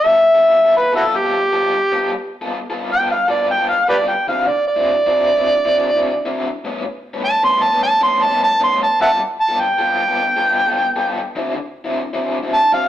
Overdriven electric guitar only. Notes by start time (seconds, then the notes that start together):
0.04 G3 B3 F4 A4
0.35 G3 B3 F4 A4
0.64 G3 B3 F4 A4
0.93 G3 B3 F4 A4
1.23 G3 B3 F4 A4
1.52 G3 B3 F4 A4
1.92 G3 B3 F4 A4
2.12 muted overdriven electric guitar stroke
2.41 G3 B3 F4 A4
2.70 G3 B3 F4 A4
3.00 G3 B3 F4 A4
3.28 G3 B3 F4 A4
3.58 G3 B3 F4 A4
3.88 G3 B3 F4 A4
4.28 D3 F#3 C4 E4
4.47 muted overdriven electric guitar stroke
4.76 D3 F#3 C4 E4
5.06 D3 F#3 C4 E4
5.36 D3 F#3 C4 E4
5.65 D3 F#3 C4 E4
5.95 D3 F#3 C4 E4
6.25 D3 F#3 C4 E4
6.64 A2 G3 B3 C#4
6.85 muted overdriven electric guitar stroke
7.14 A2 G3 B3 C#4
7.43 A2 G3 B3 C#4
7.72 A2 G3 B3 C#4
8.01 A2 G3 B3 C#4
8.30 A2 G3 B3 C#4
8.60 A2 G3 B3 C#4
9.00 G3 B3 F4 A4
9.19 muted overdriven electric guitar stroke
9.49 G3 B3 F4 A4
9.79 G3 B3 F4 A4
10.08 G3 B3 F4 A4
10.37 G3 B3 F4 A4
10.67 G3 B3 F4 A4
10.96 G3 B3 F4 A4
11.36 D3 F#3 C4 E4
11.55 muted overdriven electric guitar stroke
11.84 D3 F#3 C4 E4
12.13 D3 F#3 C4 E4
12.43 D3 F#3 C4 E4
12.72 D3 F#3 C4 E4